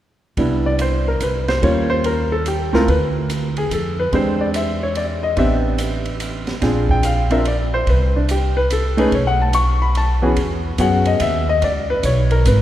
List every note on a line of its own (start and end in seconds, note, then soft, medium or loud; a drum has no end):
0.37 1.17 C2 medium
0.37 1.54 G3 medium
0.37 1.54 B3 soft
0.37 1.54 D4 soft
0.37 1.55 E4 medium
0.37 kick soft
0.37 ride soft
0.66 0.79 D5 medium
0.79 1.07 C5 medium
0.79 hi-hat pedal soft
0.79 ride medium
1.08 1.21 A#4 medium
1.20 1.59 C2 medium
1.20 1.48 B4 medium
1.20 hi-hat pedal medium
1.20 ride medium
1.48 1.62 C5 medium
1.48 snare soft
1.48 ride soft
1.62 2.69 D#2 medium
1.62 2.26 G3 medium
1.62 2.26 A#3 soft
1.62 2.26 C#4 soft
1.62 2.27 F4 medium
1.62 1.89 C#5 medium
1.62 kick soft
1.62 ride soft
1.90 2.04 C5 medium
2.04 2.31 A#4 medium
2.04 ride soft
2.32 2.46 A4 medium
2.46 2.73 G4 medium
2.46 hi-hat pedal medium
2.46 ride medium
2.73 2.86 C#2 medium
2.73 2.86 A3 medium
2.73 2.86 C4 medium
2.73 2.87 E4 medium
2.73 2.87 F4 medium
2.73 2.88 A#4 medium
2.73 snare soft
2.88 3.67 D2 medium
2.88 3.05 B4 medium
2.88 kick soft
2.88 ride soft
3.30 hi-hat pedal medium
3.30 ride medium
3.57 3.71 G#4 medium
3.57 ride soft
3.70 4.09 F2 medium
3.70 3.98 A4 medium
3.70 hi-hat pedal soft
3.70 ride medium
4.00 4.13 B4 medium
4.13 5.33 E2 medium
4.13 5.29 G#3 medium
4.13 5.29 C4 soft
4.13 5.29 D4 soft
4.13 5.30 G4 medium
4.13 4.40 C5 medium
4.13 kick soft
4.13 ride soft
4.41 4.54 D5 medium
4.54 4.81 E5 medium
4.54 hi-hat pedal medium
4.54 ride medium
4.83 4.96 C#5 medium
4.95 5.23 D5 medium
4.95 ride medium
5.23 5.37 D#5 medium
5.37 6.58 A1 medium
5.37 6.53 B3 medium
5.37 6.53 C4 medium
5.37 6.54 D4 medium
5.37 6.54 G4 medium
5.37 5.55 E5 medium
5.37 kick soft
5.37 ride soft
5.78 hi-hat pedal medium
5.78 ride medium
6.05 ride soft
6.20 hi-hat pedal medium
6.20 ride medium
6.47 snare soft
6.47 ride soft
6.61 7.83 A#1 medium
6.61 7.25 C4 medium
6.61 7.25 D4 soft
6.61 7.26 F4 soft
6.61 7.26 G#4 medium
6.61 kick soft
6.61 snare soft
6.61 ride medium
6.89 7.04 G5 medium
6.89 kick soft
7.03 7.31 F5 medium
7.03 hi-hat pedal medium
7.03 ride medium
7.30 7.44 C4 medium
7.30 7.44 D4 medium
7.30 7.44 F4 medium
7.30 7.45 A#4 medium
7.30 7.45 E5 medium
7.30 ride soft
7.45 7.73 D5 medium
7.45 ride medium
7.74 7.87 C5 medium
7.87 9.08 C2 medium
7.87 8.15 B4 medium
7.87 kick soft
7.87 ride soft
8.16 8.29 D4 soft
8.29 8.56 G4 medium
8.29 hi-hat pedal medium
8.29 ride medium
8.57 8.71 B4 medium
8.70 8.98 A4 medium
8.70 hi-hat pedal medium
8.70 ride medium
8.97 9.10 A3 medium
8.97 9.11 C#4 medium
8.97 9.11 D#4 medium
8.97 9.11 G#4 medium
8.97 9.13 B4 medium
8.97 ride soft
9.12 10.33 B1 medium
9.12 9.27 C#5 medium
9.12 kick soft
9.12 ride soft
9.27 9.40 F#5 medium
9.42 9.54 A5 medium
9.53 9.81 C#6 loud
9.53 hi-hat pedal soft
9.53 ride medium
9.82 9.96 B5 medium
9.95 10.13 A5 medium
9.95 ride medium
10.22 10.35 E3 medium
10.22 10.35 B3 medium
10.22 10.36 C#4 medium
10.22 10.36 F#4 medium
10.22 10.36 G#4 medium
10.36 10.77 E2 medium
10.36 kick soft
10.36 ride medium
10.78 11.19 F#2 medium
10.78 11.42 B3 medium
10.78 11.42 C#4 medium
10.78 11.43 F#4 medium
10.78 11.43 G#4 medium
10.78 11.06 F#5 medium
10.78 kick soft
10.78 hi-hat pedal medium
10.78 ride medium
11.05 11.20 D#5 medium
11.05 ride soft
11.20 11.61 D#2 medium
11.20 11.47 E5 medium
11.20 kick soft
11.20 hi-hat pedal medium
11.20 ride medium
11.49 11.63 D#5 medium
11.62 12.02 C#2 medium
11.62 11.89 D5 medium
11.62 kick soft
11.62 ride medium
11.90 12.04 B4 medium
12.03 12.44 B1 medium
12.03 12.31 C#5 medium
12.03 kick soft
12.03 hi-hat pedal medium
12.03 ride medium
12.31 12.45 A#4 medium
12.31 ride soft
12.45 12.62 G#1 medium
12.45 12.62 B4 medium
12.45 kick soft
12.45 hi-hat pedal medium
12.45 ride medium